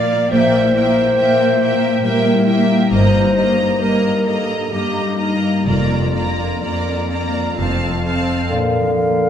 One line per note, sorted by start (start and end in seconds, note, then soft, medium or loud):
0.00 0.22 A#2 soft
0.00 0.31 A#2 soft
0.00 0.35 F3 soft
0.00 0.30 A#3 soft
0.00 1.15 A#3 soft
0.00 0.35 F4 soft
0.00 0.87 A#4 soft
0.00 0.30 D5 medium
0.00 0.31 D5 soft
0.00 0.30 F5 soft
0.31 1.05 A#1 soft
0.31 1.07 A#2 soft
0.31 2.95 A#2 soft
0.31 0.74 A#3 soft
0.31 2.07 C5 medium
0.31 0.73 E5 soft
0.31 0.73 G5 soft
0.61 2.31 E4 soft
0.74 1.16 A#3 soft
0.74 1.14 E5 soft
0.74 1.15 G5 soft
0.89 1.44 A#4 soft
1.15 1.94 A#2 soft
1.15 1.73 A#3 soft
1.15 1.59 A#3 soft
1.15 1.59 E5 soft
1.15 1.59 G5 soft
1.45 3.49 A#4 soft
1.60 2.02 A#3 soft
1.60 2.01 E5 soft
1.60 2.02 G5 soft
1.74 2.61 A#3 soft
2.03 2.80 A#2 soft
2.03 4.71 G3 soft
2.03 2.46 A#3 soft
2.03 2.48 A#4 medium
2.03 2.44 E5 soft
2.03 2.45 G5 soft
2.33 2.95 E4 soft
2.46 2.89 A#3 soft
2.46 2.89 E5 soft
2.46 2.90 G5 soft
2.62 3.79 A#3 soft
2.90 3.67 G1 soft
2.90 5.70 G2 soft
2.90 3.69 G2 soft
2.90 3.34 A#3 soft
2.90 3.82 C5 medium
2.90 3.34 D#5 soft
2.90 3.34 A#5 soft
3.21 5.01 D#4 soft
3.35 3.79 A#3 soft
3.35 3.78 D#5 soft
3.35 3.79 A#5 soft
3.50 4.09 A#4 soft
3.79 4.61 G2 soft
3.79 4.40 A#3 soft
3.79 4.24 A#3 soft
3.79 4.28 A#4 medium
3.79 4.24 D#5 soft
3.79 4.25 A#5 soft
4.11 6.29 A#4 soft
4.25 4.70 A#3 soft
4.25 4.73 A4 soft
4.25 4.69 D#5 soft
4.25 4.70 A#5 soft
4.41 5.32 A#3 soft
4.70 5.55 G2 soft
4.70 5.70 G3 soft
4.70 5.17 A#3 soft
4.70 5.20 G4 soft
4.70 5.16 D#5 soft
4.70 5.18 A#5 soft
5.03 5.70 D#4 soft
5.17 5.65 A#3 soft
5.17 5.65 D#4 soft
5.17 5.65 D#5 soft
5.17 5.65 A#5 soft
5.34 6.61 A#3 soft
5.65 6.49 F1 soft
5.65 7.57 F2 soft
5.65 6.51 F2 soft
5.65 6.13 A#3 soft
5.65 8.02 F4 soft
5.65 6.11 D5 soft
5.65 6.13 A#5 soft
5.98 7.62 D4 soft
6.12 6.61 A#3 soft
6.12 6.60 D5 soft
6.12 6.61 A#5 soft
6.30 6.93 A#4 soft
6.62 7.47 F2 soft
6.62 7.26 A#3 soft
6.62 7.09 A#3 soft
6.62 7.08 D5 soft
6.62 7.09 A#5 soft
6.94 7.62 A#4 soft
7.09 7.57 A#3 soft
7.09 7.56 D5 soft
7.09 7.57 A#5 soft
7.27 7.62 A#3 soft
7.57 8.38 F1 soft
7.57 8.40 F2 soft
7.57 8.55 F2 soft
7.57 8.05 C4 soft
7.57 8.04 F5 soft
7.57 8.04 A5 soft
7.90 8.55 A3 soft
8.05 8.51 C4 soft
8.05 8.50 F5 soft
8.05 8.50 A5 soft
8.21 8.55 C4 soft
8.21 8.55 C5 soft
8.50 9.29 A#2 soft
8.50 9.29 D3 medium
8.50 9.29 A#3 soft
8.50 8.93 A#4 soft
8.50 8.93 F5 soft
8.79 9.29 F3 soft
8.94 9.29 A#4 soft
8.94 9.29 F5 soft
9.08 9.29 A#3 soft